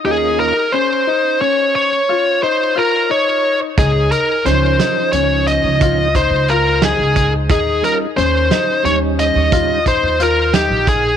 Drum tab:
HH |-----------|xxxxxxxxxxx|xxxxxxxxxxx|
SD |-----------|--oo-----o-|---o-----o-|
BD |-----------|o-----oo--o|o-----oo--o|